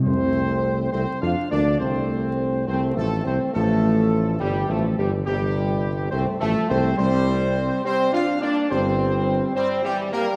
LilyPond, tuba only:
\new Staff \with { instrumentName = "Tuba" } { \clef bass \time 4/4 \key f \major \tempo 4 = 70 c,4 \tuplet 3/2 { c,8 f,8 d,8 } c,4 \tuplet 3/2 { c,8 a,,8 c,8 } | a,,4 \tuplet 3/2 { g,,8 a,,8 g,,8 } g,,4 \tuplet 3/2 { c,8 a,,8 c,8 } | c,4 r4 g,,4 r4 | }